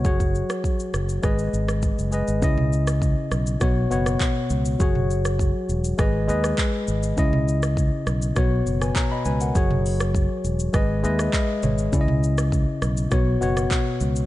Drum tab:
HH |----------------|----------------|----------------|----------------|
SH |xxxxxxxxxxxxxxxx|x-xxx-xxx-xxx-xx|x-xxx-xxx-xxx-xx|x-xxx-xxx-xxx-xx|
CP |----------------|------------x---|------------x---|------------x---|
SD |---r--r-r--r----|---r--r-r--r----|---r----r--r----|---r--r-r--r----|
T2 |----------------|-o--------------|-o--------------|-o--------------|
BD |oo--o---o---o---|o---o---o---o---|o---o---o---o---|o---o---o---o---|

HH |--o-------------|----------------|
SH |x-xxx-xxx-xxx-xx|x-xxx-xxx-xxx-xx|
CP |------------x---|------------x---|
SD |---r----r--r----|---r--r-r--r----|
T2 |-o------------o-|-o--------------|
BD |o---o---o---o---|o---o---o---o---|